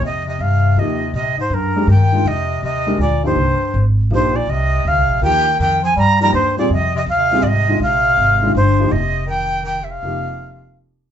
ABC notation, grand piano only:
X:1
M:3/4
L:1/8
Q:"Swing" 1/4=162
K:Fdor
V:1 name="Grand piano"
z4 [F,B,EG] z | z3 [A,DGB] z [E,A,DF] | z3 [A,DGB] z [F,B,EG] | z4 [F,B,EG] z |
z4 [F,B,EG] z | z3 [F,B,EG] z [G,CFA] | z3 [G,CFA] z [E,A,DF] | z3 [E,A,DF] z [F,B,EG] |
z6 | [F,B,EG]4- [F,B,EG] z |]